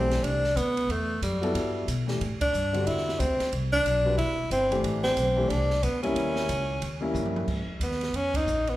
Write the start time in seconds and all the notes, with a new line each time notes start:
Already playing: B1 E3 A3 C4 D4 G4
0.11 snare, ride
0.23 C2 D4, ride
0.44 snare
0.56 D2 B3, hi-hat pedal, ride
0.77 ride
0.88 E2 A3, ride
1.22 F#2 G3, hi-hat pedal, ride
1.41 B3 E4 F#4 A4, ride
1.54 G2, ride
1.88 B2, hi-hat pedal, ride
2.07 E3 A3 D4 G4, snare
2.21 A2, ride
2.41 D4, muted upright bass stroke, kick, ride
2.53 G2, hi-hat pedal
2.73 D3 G3 C4 F#4, ride
2.87 E2 E4, ride
2.98 snare
3.09 snare
3.19 D2 C4, hi-hat pedal, ride
3.39 muted upright bass stroke, snare, ride
3.52 C2, ride
3.72 D4, kick
3.85 B1, hi-hat pedal, ride
4.05 G3 C4 F#4 B4
4.17 E1 E4, ride
4.50 G1 C4, hi-hat pedal, ride
4.71 E3 A3 D4 G4, ride
4.83 A1, ride
5.03 C4, snare
5.17 B1, hi-hat pedal, ride
5.36 E3 A3 D4 G4
5.49 C2 D4, ride
5.70 snare
5.82 D2 B3, hi-hat pedal, ride
6.03 G3 A#3 C#4 E4, ride
6.15 D#2, ride
6.36 snare
6.49 C#2, hi-hat pedal, ride
6.82 D#2, ride
7.01 G3 A#3 C#4 E4
7.14 G2, hi-hat pedal, mid tom
7.26 mid tom
7.36 mid tom
7.48 G#2, kick, crash
7.67 muted upright bass stroke
7.80 D#2 B3, hi-hat pedal, ride
7.91 snare
8.01 snare, ride
8.13 F2 C#4, ride
8.34 D#4, kick, ride
8.46 A#1, hi-hat pedal
8.67 B3, ride